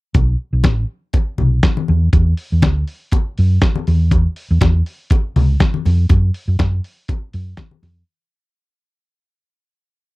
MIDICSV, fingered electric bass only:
0, 0, Header, 1, 2, 480
1, 0, Start_track
1, 0, Tempo, 495050
1, 142, Time_signature, 4, 2, 24, 8
1, 9841, End_track
2, 0, Start_track
2, 0, Title_t, "Fingered electric bass"
2, 0, Program_c, 0, 33
2, 145, Note_on_c, 0, 35, 86
2, 329, Note_off_c, 0, 35, 0
2, 510, Note_on_c, 0, 35, 76
2, 626, Note_off_c, 0, 35, 0
2, 626, Note_on_c, 0, 33, 69
2, 810, Note_off_c, 0, 33, 0
2, 1351, Note_on_c, 0, 35, 79
2, 1534, Note_off_c, 0, 35, 0
2, 1833, Note_on_c, 0, 40, 89
2, 2015, Note_off_c, 0, 40, 0
2, 2068, Note_on_c, 0, 40, 93
2, 2252, Note_off_c, 0, 40, 0
2, 2445, Note_on_c, 0, 40, 77
2, 2552, Note_off_c, 0, 40, 0
2, 2552, Note_on_c, 0, 38, 73
2, 2736, Note_off_c, 0, 38, 0
2, 3284, Note_on_c, 0, 42, 87
2, 3464, Note_off_c, 0, 42, 0
2, 3760, Note_on_c, 0, 40, 88
2, 4128, Note_off_c, 0, 40, 0
2, 4369, Note_on_c, 0, 40, 93
2, 4452, Note_off_c, 0, 40, 0
2, 4479, Note_on_c, 0, 40, 83
2, 4662, Note_off_c, 0, 40, 0
2, 5198, Note_on_c, 0, 37, 90
2, 5381, Note_off_c, 0, 37, 0
2, 5679, Note_on_c, 0, 41, 83
2, 5862, Note_off_c, 0, 41, 0
2, 5916, Note_on_c, 0, 42, 89
2, 6100, Note_off_c, 0, 42, 0
2, 6280, Note_on_c, 0, 42, 86
2, 6367, Note_off_c, 0, 42, 0
2, 6396, Note_on_c, 0, 42, 89
2, 6580, Note_off_c, 0, 42, 0
2, 7116, Note_on_c, 0, 42, 82
2, 7300, Note_off_c, 0, 42, 0
2, 7587, Note_on_c, 0, 41, 96
2, 7774, Note_off_c, 0, 41, 0
2, 9841, End_track
0, 0, End_of_file